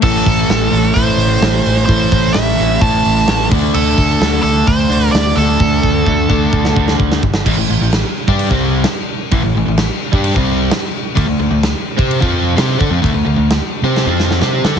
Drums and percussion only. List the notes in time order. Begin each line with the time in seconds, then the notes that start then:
0.02 kick, crash
0.26 kick, open hi-hat
0.50 snare, open hi-hat
0.73 open hi-hat
0.96 kick, open hi-hat
1.20 open hi-hat
1.42 snare, open hi-hat
1.66 open hi-hat
1.89 kick, open hi-hat
2.12 kick, open hi-hat
2.34 snare, open hi-hat
2.59 snare, open hi-hat
2.81 kick, open hi-hat
3.04 open hi-hat
3.28 snare, open hi-hat
3.52 kick, open hi-hat
3.74 crash
3.98 kick, open hi-hat
4.22 snare, open hi-hat
4.46 open hi-hat
4.67 kick, open hi-hat
4.92 open hi-hat
5.15 snare, open hi-hat
5.38 open hi-hat
5.60 kick
5.83 kick
6.07 kick
6.30 kick
6.53 kick
6.65 snare
6.76 kick
6.88 snare
7.00 kick
7.12 snare
7.23 kick
7.34 snare
7.46 kick, crash
7.93 snare, crash
8.28 kick
8.39 crash
8.51 kick
8.84 snare, crash
9.31 kick, crash
9.78 snare, crash
10.13 kick
10.24 crash
10.36 kick
10.71 snare, crash
11.17 kick, crash
11.63 snare, crash
11.99 kick
12.11 crash
12.22 kick
12.58 snare, crash
12.81 kick
13.04 kick, crash
13.51 snare, crash
13.97 snare
14.20 snare
14.31 snare
14.42 snare
14.65 snare